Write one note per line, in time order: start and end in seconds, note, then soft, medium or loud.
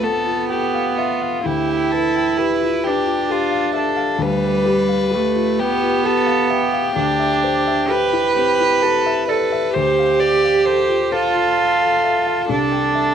0.00 1.41 D2 medium
0.00 1.44 B3 loud
0.00 1.48 C4 medium
0.00 0.17 F4 soft
0.00 0.04 A4 soft
0.00 0.41 A4 medium
0.00 0.50 A4 medium
0.00 0.75 F5 medium
0.26 0.64 F4 medium
0.50 0.99 G4 medium
0.50 0.88 A4 medium
0.75 1.13 F5 medium
0.98 1.48 F4 medium
0.98 1.22 E5 medium
1.22 1.46 F5 medium
1.44 4.17 D2 medium
1.44 2.88 E4 loud
1.44 1.94 G4 medium
1.69 2.06 G5 medium
1.92 2.39 A4 medium
1.92 2.29 B4 medium
2.16 2.52 G5 medium
2.38 2.75 G4 medium
2.38 2.86 B4 medium
2.62 2.98 F4 medium
2.84 4.23 D4 loud
2.84 3.32 G4 medium
2.84 3.21 B4 medium
3.06 3.43 F4 medium
3.29 3.75 F4 medium
3.29 3.67 G4 medium
3.51 3.89 F5 medium
3.73 4.24 A4 medium
3.73 3.98 E5 medium
3.96 4.35 F5 medium
4.18 6.90 D2 medium
4.23 5.16 G3 loud
4.23 5.61 B4 loud
4.42 4.80 B4 medium
4.66 5.03 G4 medium
4.89 5.26 F5 medium
5.11 5.60 A3 loud
5.11 5.49 G4 medium
5.35 5.72 F4 medium
5.58 6.95 B3 loud
5.58 6.07 G4 medium
5.58 5.95 B4 medium
5.81 6.18 F4 medium
6.04 6.41 G4 medium
6.04 6.52 A4 loud
6.26 6.63 F5 medium
6.50 8.36 G4 medium
6.50 6.73 E5 medium
6.73 6.97 F5 medium
6.95 9.70 D2 medium
6.95 7.90 D4 loud
7.20 7.57 E5 medium
7.43 7.81 C5 medium
7.67 8.04 E5 medium
7.89 8.27 G4 medium
7.89 9.30 B4 loud
8.13 8.50 E4 medium
8.36 8.73 C4 medium
8.36 8.84 G4 medium
8.60 8.96 E4 medium
8.82 9.19 G4 medium
8.82 9.28 A4 medium
9.06 9.42 E5 medium
9.28 9.74 A4 loud
9.28 9.76 B4 medium
9.28 9.51 D5 medium
9.52 9.75 E5 medium
9.74 12.46 D2 medium
9.74 11.12 G4 loud
9.74 10.21 C5 medium
9.99 10.35 F5 medium
10.20 10.57 C5 medium
10.20 10.68 D5 medium
10.44 10.80 F5 medium
10.65 11.02 A4 medium
10.65 11.14 C5 medium
10.88 11.25 F4 medium
11.11 12.48 F4 loud
11.11 12.49 A4 medium
11.11 11.48 C5 medium
11.35 11.71 F4 medium
11.58 11.94 A4 medium
11.81 12.18 F5 medium
12.04 12.27 E5 soft
12.49 13.14 C2 medium
12.49 13.14 D4 loud
12.49 13.14 A4 medium
12.72 13.10 G5 soft
12.95 13.14 E5 soft